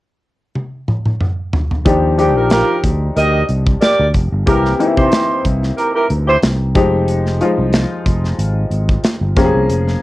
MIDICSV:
0, 0, Header, 1, 5, 480
1, 0, Start_track
1, 0, Key_signature, -3, "major"
1, 0, Tempo, 652884
1, 1367, Time_signature, 4, 2, 24, 8
1, 7368, End_track
2, 0, Start_track
2, 0, Title_t, "Horn section"
2, 0, Program_c, 0, 61
2, 1605, Note_on_c, 0, 67, 84
2, 1606, Note_on_c, 0, 62, 75
2, 1609, Note_on_c, 0, 58, 75
2, 1709, Note_off_c, 0, 67, 0
2, 1710, Note_off_c, 0, 62, 0
2, 1712, Note_off_c, 0, 58, 0
2, 1736, Note_on_c, 0, 65, 81
2, 1737, Note_on_c, 0, 70, 86
2, 1738, Note_on_c, 0, 67, 76
2, 1824, Note_off_c, 0, 65, 0
2, 1825, Note_off_c, 0, 67, 0
2, 1825, Note_off_c, 0, 70, 0
2, 1846, Note_on_c, 0, 65, 102
2, 1847, Note_on_c, 0, 70, 109
2, 1848, Note_on_c, 0, 67, 99
2, 2038, Note_off_c, 0, 65, 0
2, 2039, Note_off_c, 0, 67, 0
2, 2039, Note_off_c, 0, 70, 0
2, 2329, Note_on_c, 0, 67, 99
2, 2329, Note_on_c, 0, 70, 100
2, 2329, Note_on_c, 0, 75, 106
2, 2520, Note_off_c, 0, 67, 0
2, 2520, Note_off_c, 0, 70, 0
2, 2520, Note_off_c, 0, 75, 0
2, 2803, Note_on_c, 0, 67, 99
2, 2804, Note_on_c, 0, 70, 100
2, 2804, Note_on_c, 0, 74, 108
2, 2996, Note_off_c, 0, 67, 0
2, 2997, Note_off_c, 0, 70, 0
2, 2997, Note_off_c, 0, 74, 0
2, 3285, Note_on_c, 0, 67, 92
2, 3286, Note_on_c, 0, 64, 91
2, 3287, Note_on_c, 0, 70, 103
2, 3478, Note_off_c, 0, 64, 0
2, 3478, Note_off_c, 0, 67, 0
2, 3479, Note_off_c, 0, 70, 0
2, 3658, Note_on_c, 0, 72, 88
2, 3659, Note_on_c, 0, 64, 77
2, 3659, Note_on_c, 0, 67, 81
2, 3987, Note_off_c, 0, 64, 0
2, 3987, Note_off_c, 0, 67, 0
2, 3987, Note_off_c, 0, 72, 0
2, 4244, Note_on_c, 0, 67, 78
2, 4245, Note_on_c, 0, 64, 75
2, 4245, Note_on_c, 0, 70, 85
2, 4349, Note_off_c, 0, 64, 0
2, 4349, Note_off_c, 0, 67, 0
2, 4349, Note_off_c, 0, 70, 0
2, 4373, Note_on_c, 0, 64, 85
2, 4373, Note_on_c, 0, 67, 82
2, 4374, Note_on_c, 0, 70, 87
2, 4463, Note_off_c, 0, 64, 0
2, 4463, Note_off_c, 0, 67, 0
2, 4463, Note_off_c, 0, 70, 0
2, 4612, Note_on_c, 0, 64, 98
2, 4612, Note_on_c, 0, 67, 94
2, 4613, Note_on_c, 0, 72, 105
2, 4679, Note_off_c, 0, 67, 0
2, 4680, Note_off_c, 0, 64, 0
2, 4680, Note_off_c, 0, 72, 0
2, 7368, End_track
3, 0, Start_track
3, 0, Title_t, "Grand piano"
3, 0, Program_c, 1, 0
3, 1361, Note_on_c, 1, 53, 83
3, 1363, Note_on_c, 1, 62, 71
3, 1366, Note_on_c, 1, 63, 69
3, 1369, Note_on_c, 1, 67, 86
3, 1514, Control_c, 1, 64, 127
3, 1524, Note_off_c, 1, 53, 0
3, 1525, Note_off_c, 1, 62, 0
3, 1526, Note_off_c, 1, 63, 0
3, 1528, Note_off_c, 1, 67, 0
3, 1600, Note_on_c, 1, 53, 78
3, 1603, Note_on_c, 1, 62, 74
3, 1605, Note_on_c, 1, 63, 74
3, 1608, Note_on_c, 1, 67, 92
3, 2225, Note_off_c, 1, 53, 0
3, 2227, Note_off_c, 1, 62, 0
3, 2228, Note_off_c, 1, 63, 0
3, 2229, Note_off_c, 1, 67, 0
3, 3280, Note_on_c, 1, 52, 75
3, 3284, Note_on_c, 1, 58, 69
3, 3286, Note_on_c, 1, 60, 71
3, 3289, Note_on_c, 1, 67, 86
3, 3295, Control_c, 1, 64, 0
3, 3427, Control_c, 1, 64, 127
3, 3443, Note_off_c, 1, 52, 0
3, 3445, Note_off_c, 1, 58, 0
3, 3447, Note_off_c, 1, 60, 0
3, 3448, Note_off_c, 1, 67, 0
3, 3521, Note_on_c, 1, 52, 75
3, 3524, Note_on_c, 1, 58, 74
3, 3527, Note_on_c, 1, 60, 77
3, 3531, Note_on_c, 1, 63, 70
3, 3577, Note_on_c, 1, 64, 84
3, 3580, Note_off_c, 1, 63, 0
3, 4146, Note_off_c, 1, 52, 0
3, 4147, Note_off_c, 1, 58, 0
3, 4149, Note_off_c, 1, 60, 0
3, 4174, Note_off_c, 1, 64, 0
3, 4962, Note_on_c, 1, 53, 87
3, 4965, Note_on_c, 1, 56, 77
3, 4968, Note_on_c, 1, 63, 76
3, 4970, Note_on_c, 1, 67, 96
3, 4978, Control_c, 1, 64, 0
3, 5085, Control_c, 1, 64, 127
3, 5356, Note_off_c, 1, 53, 0
3, 5358, Note_off_c, 1, 56, 0
3, 5359, Note_off_c, 1, 63, 0
3, 5360, Note_off_c, 1, 67, 0
3, 5445, Note_on_c, 1, 53, 83
3, 5448, Note_on_c, 1, 56, 72
3, 5451, Note_on_c, 1, 63, 77
3, 5454, Note_on_c, 1, 65, 87
3, 6068, Note_off_c, 1, 53, 0
3, 6070, Note_off_c, 1, 56, 0
3, 6071, Note_off_c, 1, 63, 0
3, 6073, Note_off_c, 1, 65, 0
3, 6883, Note_on_c, 1, 53, 80
3, 6888, Note_on_c, 1, 58, 77
3, 6890, Note_on_c, 1, 61, 78
3, 6894, Note_on_c, 1, 67, 75
3, 6898, Control_c, 1, 64, 0
3, 6941, Note_on_c, 1, 68, 93
3, 6942, Note_off_c, 1, 67, 0
3, 7046, Control_c, 1, 64, 127
3, 7278, Note_off_c, 1, 53, 0
3, 7280, Note_off_c, 1, 58, 0
3, 7281, Note_off_c, 1, 61, 0
3, 7306, Note_off_c, 1, 68, 0
3, 7368, End_track
4, 0, Start_track
4, 0, Title_t, "Fretless electric bass"
4, 0, Program_c, 2, 35
4, 1366, Note_on_c, 2, 39, 101
4, 1735, Note_off_c, 2, 39, 0
4, 1735, Note_on_c, 2, 34, 79
4, 1921, Note_off_c, 2, 34, 0
4, 2085, Note_on_c, 2, 38, 88
4, 2271, Note_off_c, 2, 38, 0
4, 2328, Note_on_c, 2, 38, 86
4, 2513, Note_off_c, 2, 38, 0
4, 2567, Note_on_c, 2, 36, 82
4, 2752, Note_off_c, 2, 36, 0
4, 2937, Note_on_c, 2, 38, 81
4, 3022, Note_off_c, 2, 38, 0
4, 3047, Note_on_c, 2, 29, 88
4, 3147, Note_off_c, 2, 29, 0
4, 3179, Note_on_c, 2, 31, 93
4, 3263, Note_off_c, 2, 31, 0
4, 3286, Note_on_c, 2, 36, 100
4, 3472, Note_off_c, 2, 36, 0
4, 3657, Note_on_c, 2, 48, 91
4, 3742, Note_off_c, 2, 48, 0
4, 4006, Note_on_c, 2, 36, 85
4, 4192, Note_off_c, 2, 36, 0
4, 4487, Note_on_c, 2, 38, 87
4, 4673, Note_off_c, 2, 38, 0
4, 4726, Note_on_c, 2, 36, 86
4, 4966, Note_on_c, 2, 29, 89
4, 4977, Note_off_c, 2, 36, 0
4, 5439, Note_off_c, 2, 29, 0
4, 5575, Note_on_c, 2, 36, 84
4, 5761, Note_off_c, 2, 36, 0
4, 5925, Note_on_c, 2, 29, 92
4, 6112, Note_off_c, 2, 29, 0
4, 6164, Note_on_c, 2, 32, 91
4, 6351, Note_off_c, 2, 32, 0
4, 6400, Note_on_c, 2, 32, 80
4, 6589, Note_off_c, 2, 32, 0
4, 6772, Note_on_c, 2, 31, 84
4, 6887, Note_off_c, 2, 31, 0
4, 6887, Note_on_c, 2, 29, 87
4, 6988, Note_off_c, 2, 29, 0
4, 7014, Note_on_c, 2, 36, 86
4, 7101, Note_off_c, 2, 36, 0
4, 7126, Note_on_c, 2, 29, 94
4, 7312, Note_off_c, 2, 29, 0
4, 7368, End_track
5, 0, Start_track
5, 0, Title_t, "Drums"
5, 408, Note_on_c, 9, 48, 54
5, 481, Note_off_c, 9, 48, 0
5, 648, Note_on_c, 9, 47, 69
5, 721, Note_off_c, 9, 47, 0
5, 776, Note_on_c, 9, 47, 62
5, 850, Note_off_c, 9, 47, 0
5, 886, Note_on_c, 9, 45, 76
5, 960, Note_off_c, 9, 45, 0
5, 1126, Note_on_c, 9, 43, 98
5, 1200, Note_off_c, 9, 43, 0
5, 1258, Note_on_c, 9, 43, 80
5, 1331, Note_off_c, 9, 43, 0
5, 1365, Note_on_c, 9, 36, 113
5, 1366, Note_on_c, 9, 42, 86
5, 1439, Note_off_c, 9, 36, 0
5, 1439, Note_off_c, 9, 42, 0
5, 1607, Note_on_c, 9, 42, 75
5, 1681, Note_off_c, 9, 42, 0
5, 1838, Note_on_c, 9, 42, 91
5, 1846, Note_on_c, 9, 38, 112
5, 1911, Note_off_c, 9, 42, 0
5, 1920, Note_off_c, 9, 38, 0
5, 2085, Note_on_c, 9, 36, 81
5, 2085, Note_on_c, 9, 42, 78
5, 2158, Note_off_c, 9, 36, 0
5, 2159, Note_off_c, 9, 42, 0
5, 2327, Note_on_c, 9, 42, 87
5, 2401, Note_off_c, 9, 42, 0
5, 2564, Note_on_c, 9, 42, 65
5, 2638, Note_off_c, 9, 42, 0
5, 2695, Note_on_c, 9, 36, 94
5, 2769, Note_off_c, 9, 36, 0
5, 2805, Note_on_c, 9, 42, 82
5, 2812, Note_on_c, 9, 38, 94
5, 2878, Note_off_c, 9, 42, 0
5, 2885, Note_off_c, 9, 38, 0
5, 3043, Note_on_c, 9, 42, 72
5, 3047, Note_on_c, 9, 36, 81
5, 3117, Note_off_c, 9, 42, 0
5, 3120, Note_off_c, 9, 36, 0
5, 3286, Note_on_c, 9, 36, 116
5, 3286, Note_on_c, 9, 42, 91
5, 3360, Note_off_c, 9, 36, 0
5, 3360, Note_off_c, 9, 42, 0
5, 3419, Note_on_c, 9, 38, 32
5, 3493, Note_off_c, 9, 38, 0
5, 3531, Note_on_c, 9, 42, 71
5, 3605, Note_off_c, 9, 42, 0
5, 3657, Note_on_c, 9, 36, 90
5, 3730, Note_off_c, 9, 36, 0
5, 3762, Note_on_c, 9, 42, 89
5, 3771, Note_on_c, 9, 38, 121
5, 3836, Note_off_c, 9, 42, 0
5, 3844, Note_off_c, 9, 38, 0
5, 4007, Note_on_c, 9, 36, 80
5, 4008, Note_on_c, 9, 42, 78
5, 4080, Note_off_c, 9, 36, 0
5, 4082, Note_off_c, 9, 42, 0
5, 4141, Note_on_c, 9, 38, 35
5, 4214, Note_off_c, 9, 38, 0
5, 4250, Note_on_c, 9, 42, 84
5, 4324, Note_off_c, 9, 42, 0
5, 4485, Note_on_c, 9, 42, 67
5, 4558, Note_off_c, 9, 42, 0
5, 4724, Note_on_c, 9, 42, 81
5, 4731, Note_on_c, 9, 38, 105
5, 4797, Note_off_c, 9, 42, 0
5, 4804, Note_off_c, 9, 38, 0
5, 4964, Note_on_c, 9, 42, 72
5, 4966, Note_on_c, 9, 36, 102
5, 5037, Note_off_c, 9, 42, 0
5, 5039, Note_off_c, 9, 36, 0
5, 5206, Note_on_c, 9, 42, 87
5, 5279, Note_off_c, 9, 42, 0
5, 5338, Note_on_c, 9, 38, 33
5, 5412, Note_off_c, 9, 38, 0
5, 5447, Note_on_c, 9, 42, 73
5, 5521, Note_off_c, 9, 42, 0
5, 5681, Note_on_c, 9, 42, 84
5, 5689, Note_on_c, 9, 38, 120
5, 5754, Note_off_c, 9, 42, 0
5, 5763, Note_off_c, 9, 38, 0
5, 5925, Note_on_c, 9, 36, 86
5, 5926, Note_on_c, 9, 42, 79
5, 5999, Note_off_c, 9, 36, 0
5, 6000, Note_off_c, 9, 42, 0
5, 6060, Note_on_c, 9, 38, 32
5, 6133, Note_off_c, 9, 38, 0
5, 6168, Note_on_c, 9, 42, 86
5, 6241, Note_off_c, 9, 42, 0
5, 6406, Note_on_c, 9, 42, 66
5, 6479, Note_off_c, 9, 42, 0
5, 6535, Note_on_c, 9, 36, 90
5, 6609, Note_off_c, 9, 36, 0
5, 6644, Note_on_c, 9, 42, 83
5, 6651, Note_on_c, 9, 38, 100
5, 6717, Note_off_c, 9, 42, 0
5, 6724, Note_off_c, 9, 38, 0
5, 6884, Note_on_c, 9, 42, 72
5, 6886, Note_on_c, 9, 36, 104
5, 6891, Note_on_c, 9, 38, 33
5, 6958, Note_off_c, 9, 42, 0
5, 6960, Note_off_c, 9, 36, 0
5, 6965, Note_off_c, 9, 38, 0
5, 7128, Note_on_c, 9, 42, 93
5, 7201, Note_off_c, 9, 42, 0
5, 7260, Note_on_c, 9, 38, 32
5, 7334, Note_off_c, 9, 38, 0
5, 7368, End_track
0, 0, End_of_file